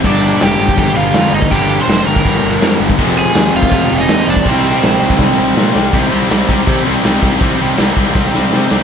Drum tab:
CC |x-x-x-x-x-x-x-x-|x-x-x-x-x-x-x-x-|x-x-x-x-x-x-x-x-|x-x-x-x---------|
SD |----o-------o---|----o-------o---|----o-------o---|----o---o---o-o-|
BD |o------oo------o|o------oo------o|o------oo------o|o------oo-------|

CC |x-x-x-x-x-x-x-x-|x-x-x-x---------|
SD |----o-------o---|----o---o-o-o-o-|
BD |o-----o-o-----o-|o-----o-o-------|